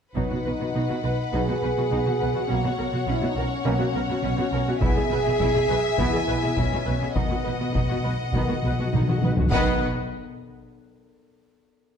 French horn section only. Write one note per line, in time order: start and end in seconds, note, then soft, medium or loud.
0.15 1.30 D#4 medium
1.33 2.48 G#4 medium
2.50 3.08 F#4 medium
3.09 3.28 E4 medium
3.29 3.38 D#4 medium
3.37 4.82 C#4 medium
4.82 5.96 G#4 loud
6.00 6.58 E4 medium
6.59 7.17 C#4 medium
7.16 8.94 B3 medium
9.54 9.78 B3 medium